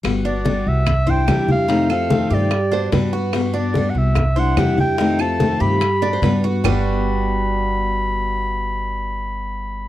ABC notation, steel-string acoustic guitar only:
X:1
M:4/4
L:1/8
Q:1/4=146
K:G
V:1 name="Steel-string acoustic guitar"
[G,B,F] [B,F] [G,B,F]2 z [G,DE] [C,E,G,DE] [G,DE] | [C,_E,A,C=F] [A,CF] [C,E,A,CF]2 z [B,^F] [G,B,F] [B,F] | [G,B,F] [B,F] [G,B,F]2 z [G,DE] [C,E,G,DE] [G,DE] | [C,_E,A,C=F] [A,CF] [C,E,A,CF]2 z [B,^F] [G,B,F] [B,F] |
[G,B,F]8- | [G,B,F]8 |]